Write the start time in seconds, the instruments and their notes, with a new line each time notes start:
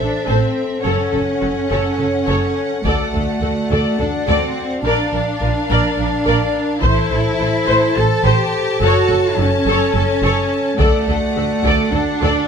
Already playing: french horn section A4 C5, violin section E5
0.00 double bass section A1, cello section D4, violin section A4
0.27 double bass section A1, cello section C4, viola section A4, violin section C5
0.83 double bass section F#1, cello section C#4, viola section A4, violin section C#5 F#5, french horn section C#5
1.11 double bass section F#1, violin section A4, viola section A4
1.40 double bass section F#1, violin section F#4, viola section A4
1.69 double bass section F#1, viola section A4, violin section C#5
1.98 double bass section F#1, violin section A4, viola section A4
2.27 double bass section F#1, viola section A4, violin section C#5
2.84 double bass section D2, cello section A3, french horn section F#4 D5, viola section A4, violin section D5, taiko
3.14 double bass section D2, violin section A4, viola section A4
3.41 double bass section D2, violin section F#4, viola section A4
3.70 double bass section D2, viola section A4, violin section D5
3.99 double bass section D2, cello section D4, viola section A4, violin section A4
4.27 double bass section D2, cello section C4, viola section A4, violin section D5
4.84 double bass section A#1, cello section D4, viola section A#4, french horn section A#4, violin section D5 F5
5.12 double bass section A#1, viola section A#4, violin section A#4
5.41 double bass section A#1, violin section F4, viola section A#4
5.70 double bass section A#1, viola section A#4, violin section D5
5.98 double bass section A#1, viola section A#4, violin section A#4
6.26 double bass section A#1, viola section A#4, violin section D5
6.83 double bass section A1, cello section E4, french horn section A4 C5, viola section C5, violin section C5 A5, taiko
7.11 double bass section A1, violin section A4, viola section C5
7.40 double bass section A1, violin section E4, viola section C5
7.67 double bass section A1, viola section C5, violin section C5
7.96 double bass section A1, cello section A4, violin section A4, viola section C5
8.24 double bass section A1, cello section G4, viola section C5, violin section C5
8.81 double bass section F#1, cello section F#4, viola section A4, french horn section C#5, violin section C#5
9.09 double bass section F#1, viola section A4, violin section A4
9.37 double bass section F#1, cello section C#4, violin section F#4, viola section A4
9.65 double bass section F#1, viola section A4, violin section C#5
9.95 double bass section F#1, viola section A4, violin section A4
10.23 double bass section F#1, viola section A4, violin section C#5
10.79 double bass section D2, cello section A3, french horn section F#4 D5, viola section A4, violin section D5 F#5, taiko
11.07 double bass section D2, viola section A4, violin section A4
11.36 double bass section D2, violin section F#4, viola section A4
11.64 double bass section D2, viola section A4, violin section D5, taiko
11.93 double bass section D2, cello section D4, viola section A4, violin section A4
12.22 double bass section D2, viola section A4, violin section D5